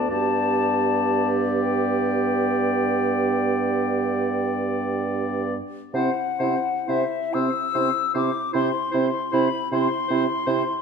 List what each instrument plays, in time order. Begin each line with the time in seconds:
Already playing: clarinet F#4, flute A5
0.10 bassoon G2, french horn B3, clarinet G4, oboe D5, flute A5
1.61 flute G5
5.94 bassoon C3, french horn C4, clarinet E4, oboe C5, flute F#5
6.40 bassoon C3, french horn C4, clarinet E4, oboe C5
6.87 bassoon C3, french horn C4, clarinet E4, oboe C5, flute E5
7.31 bassoon C3, french horn C4, clarinet E4, oboe C5, flute E6
7.74 bassoon C3, french horn C4, clarinet E4, oboe C5
8.14 bassoon C3, french horn C4, clarinet E4, oboe C5, flute D6
8.53 bassoon C3, french horn C4, clarinet E4, oboe C5, flute C6
8.92 bassoon C3, french horn C4, clarinet E4, oboe C5
9.32 bassoon C3, french horn C4, clarinet E4, oboe C5, flute B5
9.72 bassoon C3, french horn C4, clarinet E4, oboe C5, flute C6
10.08 bassoon C3, french horn C4, clarinet E4, oboe C5
10.47 bassoon C3, french horn C4, clarinet E4, oboe C5